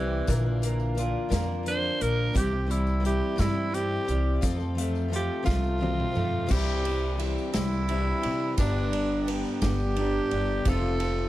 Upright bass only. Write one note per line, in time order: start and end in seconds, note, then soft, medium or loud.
0.00 0.22 C2 medium
0.28 1.12 A#1 loud
1.32 1.88 F2 medium
2.01 2.29 A#1 medium
2.36 3.20 C2 loud
3.39 3.95 G2 medium
4.09 4.37 C2 medium
4.44 5.28 F2 loud
5.47 6.03 C2 loud
6.17 6.45 F2 medium
6.51 7.35 C2 loud
7.55 8.11 C2 loud
8.25 8.52 C3 medium
8.58 9.43 G1 loud
9.62 10.18 G1 loud
10.32 10.60 G1 medium
10.66 11.29 F1 loud